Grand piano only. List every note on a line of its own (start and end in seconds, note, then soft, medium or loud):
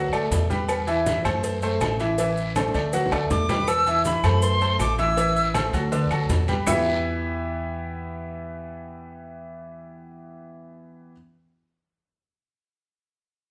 0.12 0.43 A3 medium
0.12 0.44 A4 medium
0.12 0.44 D5 medium
0.50 0.81 G3 medium
0.50 0.81 G4 medium
0.50 0.81 B4 medium
0.87 1.18 E3 medium
0.87 1.18 E4 medium
0.87 1.18 E5 loud
1.24 1.55 A3 medium
1.24 1.56 A4 medium
1.24 1.56 C5 medium
1.63 1.93 A3 medium
1.63 1.93 A4 medium
1.63 1.94 C5 medium
2.00 2.15 E3 medium
2.00 2.16 E4 medium
2.00 2.16 E5 medium
2.19 2.50 E3 medium
2.19 2.50 E4 medium
2.19 2.50 E5 medium
2.57 2.72 A3 medium
2.57 2.72 A4 medium
2.57 2.72 C5 medium
2.75 2.90 A3 medium
2.75 2.90 A4 medium
2.75 2.90 D5 medium
2.93 3.09 F#3 medium
2.93 3.09 F#4 medium
2.93 3.09 F#5 loud
3.12 3.43 A3 medium
3.12 3.43 A4 medium
3.12 3.43 D5 medium
3.49 3.64 G3 medium
3.49 3.65 G4 medium
3.49 3.65 B4 medium
3.87 4.17 E3 medium
3.87 4.18 E4 medium
3.87 4.18 E5 medium
4.24 4.55 A3 medium
4.24 4.55 A4 medium
4.24 4.55 C5 medium
4.61 4.92 A3 medium
4.61 4.92 A4 medium
4.61 4.92 C5 medium
4.99 5.14 E3 loud
4.99 5.14 E4 medium
4.99 5.14 E5 medium
5.17 5.48 E3 loud
5.17 5.48 E4 loud
5.17 5.48 E5 loud
5.55 5.70 A3 medium
5.55 5.70 A4 medium
5.55 5.70 C5 medium
5.74 5.89 F#3 medium
5.74 5.89 F#4 medium
5.74 5.89 A4 medium
5.92 6.07 D3 medium
5.92 6.08 D4 medium
5.92 6.08 D5 medium
6.11 6.42 F#3 medium
6.11 6.42 F#4 medium
6.11 6.42 A4 medium
6.48 6.64 G3 medium
6.48 6.64 G4 medium
6.48 6.64 B4 medium
6.66 11.12 E3 loud
6.66 11.12 B3 medium
6.66 11.12 E4 medium
6.66 11.12 G4 medium
6.66 11.12 B4 medium
6.66 11.13 E5 loud